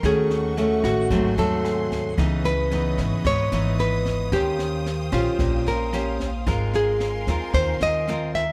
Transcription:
0.03 0.80 D#2 medium
0.03 1.08 D#3 medium
0.03 0.53 A3 medium
0.03 0.53 C#4 medium
0.03 2.16 F#4 medium
0.03 0.53 F#4 medium
0.03 0.84 G#4 medium
0.03 1.10 D#5 medium
0.03 2.16 F#5 medium
0.03 1.10 C#6 medium
0.03 kick soft
0.03 cross-stick soft
0.03 snare soft
0.30 snare soft
0.57 1.09 A3 medium
0.57 1.09 C#4 soft
0.57 1.09 F#4 medium
0.57 snare soft
0.84 1.12 A1 medium
0.84 1.39 F#4 medium
0.84 kick soft
0.84 cross-stick medium
0.84 snare soft
1.10 1.35 G#1 medium
1.10 2.15 G#2 medium
1.10 1.33 F#3 medium
1.10 1.33 A3 medium
1.10 1.33 C4 medium
1.10 2.16 G#5 medium
1.10 2.16 C6 medium
1.10 kick medium
1.10 snare soft
1.37 2.14 D#2 medium
1.37 2.14 F#3 medium
1.37 2.14 A3 medium
1.37 2.14 C4 medium
1.37 1.88 A4 medium
1.37 snare soft
1.65 cross-stick medium
1.65 snare soft
1.91 kick soft
1.91 snare soft
2.17 2.94 C#2 medium
2.17 3.22 C#3 soft
2.17 2.52 E3 medium
2.17 2.52 B3 medium
2.17 2.53 D#4 medium
2.17 4.30 B4 medium
2.17 4.30 C#5 medium
2.17 4.30 D#5 medium
2.17 6.43 D#6 medium
2.17 kick medium
2.17 cross-stick medium
2.17 snare soft
2.45 3.21 B4 medium
2.45 snare soft
2.71 3.48 E3 medium
2.71 3.48 B3 medium
2.71 3.48 D#4 soft
2.71 snare soft
2.98 3.10 G#1 medium
2.98 kick soft
2.98 snare soft
3.25 3.50 G#1 medium
3.25 4.30 G#2 soft
3.25 3.80 C#5 medium
3.25 kick medium
3.25 cross-stick medium
3.25 snare soft
3.52 4.28 G#1 medium
3.52 4.28 E3 medium
3.52 4.28 B3 medium
3.52 4.28 D#4 medium
3.52 snare soft
3.79 4.34 B4 medium
3.79 snare soft
4.05 kick soft
4.05 snare soft
4.32 5.09 D#2 medium
4.32 5.37 D#3 medium
4.32 4.85 C#4 medium
4.32 4.86 G4 medium
4.32 5.09 G4 medium
4.32 6.45 C5 medium
4.32 4.86 C5 medium
4.32 8.52 F5 medium
4.32 6.45 G5 medium
4.32 kick soft
4.32 cross-stick medium
4.32 snare soft
4.59 snare soft
4.86 snare soft
5.12 5.25 A#1 medium
5.12 5.88 C#4 medium
5.12 5.69 F4 medium
5.12 5.89 G4 medium
5.12 5.89 C5 medium
5.12 kick soft
5.12 cross-stick medium
5.12 snare soft
5.39 5.64 A#1 medium
5.39 6.44 A#2 medium
5.39 kick medium
5.39 snare soft
5.66 6.42 A#1 medium
5.66 6.17 A#4 medium
5.66 snare soft
5.93 6.28 C#4 medium
5.93 6.28 G4 medium
5.93 6.28 C5 medium
5.93 cross-stick soft
5.93 snare soft
6.20 kick soft
6.20 snare soft
6.45 7.23 G#1 medium
6.45 7.51 G#3 medium
6.45 7.23 C4 medium
6.45 7.23 F4 medium
6.45 8.52 A#4 medium
6.45 7.23 A#4 medium
6.45 8.52 G#5 medium
6.45 8.52 C6 medium
6.45 kick soft
6.45 cross-stick medium
6.45 snare soft
6.74 7.58 G#4 medium
6.74 snare soft
7.00 snare soft
7.27 7.40 D#2 medium
7.27 8.04 C4 medium
7.27 8.04 F4 medium
7.27 8.04 A#4 medium
7.27 kick soft
7.27 snare soft
7.53 7.79 D#2 medium
7.53 8.52 D#3 soft
7.53 7.82 C5 medium
7.53 kick medium
7.53 cross-stick medium
7.53 snare soft
7.80 8.52 D#2 medium
7.80 8.32 D#5 medium
7.80 snare soft
8.07 8.43 C4 medium
8.07 8.43 F4 medium
8.07 8.43 A#4 medium
8.07 snare soft
8.34 8.52 E5 medium
8.34 kick soft
8.34 snare soft

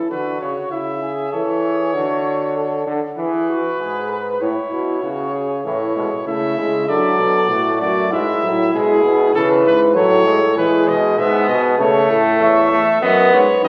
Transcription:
0.00 0.10 E3 medium
0.10 0.41 D3 medium
0.10 0.73 F#4 medium
0.10 0.40 B4 medium
0.41 0.55 C#3 medium
0.41 0.71 C#5 medium
0.71 1.32 C#3 medium
0.71 1.02 E4 medium
0.71 1.32 E5 medium
1.02 1.34 G#4 medium
1.32 1.96 E3 medium
1.32 1.63 A4 medium
1.32 2.86 C#5 medium
1.63 1.93 G#4 medium
1.94 2.86 D3 medium
1.94 2.54 F#4 medium
2.56 2.95 A4 medium
2.87 3.01 D3 medium
3.17 3.57 E3 medium
3.17 3.50 G#4 medium
3.17 4.43 B4 medium
3.49 3.79 F#4 medium
3.79 4.37 G#2 medium
3.79 4.11 G#4 medium
4.10 4.40 B4 medium
4.41 4.55 A2 medium
4.41 5.04 E4 medium
4.41 5.65 C#5 medium
4.71 5.02 B2 medium
5.02 5.64 C#3 medium
5.02 5.33 F#4 medium
5.34 5.48 G#4 medium
5.65 5.94 A2 medium
5.65 5.79 E3 medium
5.65 6.23 E4 medium
5.65 6.23 C#5 medium
5.96 6.10 B2 medium
5.96 6.10 G#3 medium
6.27 6.57 C#3 medium
6.27 6.60 A3 medium
6.27 6.87 E4 medium
6.27 6.90 E5 medium
6.58 6.90 C#3 medium
6.58 6.88 G#3 medium
6.88 7.19 D3 medium
6.88 7.49 F#3 medium
6.88 7.49 A4 medium
6.88 7.81 D5 loud
7.19 7.51 B2 medium
7.50 7.80 A2 medium
7.50 8.13 A3 medium
7.50 7.80 F#4 medium
7.80 8.11 F#2 medium
7.80 8.13 F#4 medium
7.80 8.11 D5 medium
8.11 8.26 G#2 medium
8.11 8.44 G#3 medium
8.11 9.34 E4 medium
8.11 8.72 E5 loud
8.43 8.73 A2 medium
8.43 8.73 F#3 medium
8.73 9.04 B2 medium
8.73 9.05 G#3 medium
8.73 9.34 G#4 medium
9.04 9.34 B2 medium
9.04 9.34 B3 medium
9.34 9.65 C#3 medium
9.34 9.97 E3 medium
9.34 9.49 A4 medium
9.34 9.97 B4 medium
9.66 9.98 G#2 medium
9.66 9.80 B4 medium
9.95 10.59 A2 medium
9.95 10.25 F#3 medium
9.95 10.56 A4 medium
9.95 10.56 C#5 loud
10.26 10.40 G#3 medium
10.56 10.88 E3 loud
10.56 11.17 G#3 medium
10.56 11.17 G#4 medium
10.56 10.90 B4 medium
10.88 11.20 B2 medium
10.88 11.20 D#5 medium
11.17 11.48 G#2 medium
11.17 11.78 B3 loud
11.17 11.78 G#4 medium
11.17 11.48 E5 medium
11.48 11.78 B2 loud
11.48 11.62 D#5 medium
11.79 12.09 C#3 medium
11.79 12.69 A3 loud
11.79 12.09 A4 medium
11.79 12.18 C#5 medium
12.09 12.39 A2 medium
12.09 12.40 A4 medium
12.40 12.79 E2 medium
12.40 12.80 C#5 medium
12.40 13.04 E5 loud
12.71 13.01 A3 loud
13.01 13.30 F#2 medium
13.01 13.41 B3 loud
13.01 13.68 B4 loud
13.01 13.35 D#5 medium
13.33 13.46 G#2 medium
13.33 13.64 C#5 medium
13.63 13.68 F#2 medium
13.63 13.68 D#3 loud
13.63 13.68 D#5 loud

